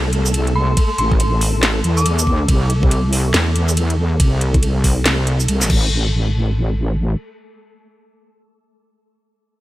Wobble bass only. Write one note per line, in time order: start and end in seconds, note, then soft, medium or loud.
0.00 0.76 C2 loud
0.98 1.83 A1 loud
1.84 2.29 E2 loud
2.29 2.47 D#2 loud
2.48 3.33 C2 medium
3.34 4.19 E2 loud
4.20 5.47 C2 loud
5.49 5.69 C2 loud
5.70 7.16 A1 loud